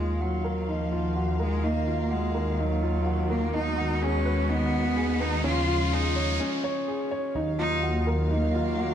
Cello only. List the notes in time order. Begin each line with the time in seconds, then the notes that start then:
Already playing: G#3
0.21 F#3
0.69 F3
1.40 G#3
1.65 A#3
2.12 G#3
2.60 F#3
3.31 A#3
3.54 D#4
4.02 C#4
4.50 B3
5.21 D#4
5.46 F4
5.93 D#4
7.59 D#4
8.30 A#3